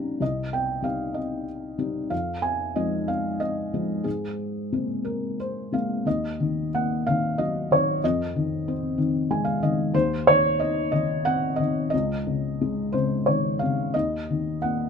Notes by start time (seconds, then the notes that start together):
Already playing: D#2 G3 C#4 D#4 F5 G5 A#5
0.20 C2 D#5
0.53 G5
0.82 G3 C4 D#4 F5
1.14 D#5
1.78 G3 C4 D#4
2.10 F2 F5
2.42 G#5
2.76 F3 G#3 D#4 D#5
3.08 F5
3.40 D#5
3.74 F3 G#3 D#4
4.04 G#2 G#4
4.72 G#3 A#3 C4
5.05 A#4
5.40 C5
5.72 G#3 A#3 C4 F5
6.06 D#2 D#5
6.40 D#3
6.75 A#3 F#5
7.07 D#3 F5
7.38 F#3 D#5
7.71 D#3 C#5
8.04 F2 D#5
8.36 D#3
8.68 C4
8.98 D#3
9.31 G#3 G#5
9.45 F5
9.62 D#3 D#5
9.94 D#2 C5
10.27 D#3 C#5
10.60 D#4 D#5
10.92 D#3 D#5
11.25 C4 F#5
11.56 D#3 D#5
11.90 C#2 D#5
12.27 C#3
12.61 G#3
12.92 C#3 C5
13.26 D#3 C#5
13.59 C#3 F5
13.94 D#2 D#5
14.30 D#3
14.62 A#3 F#5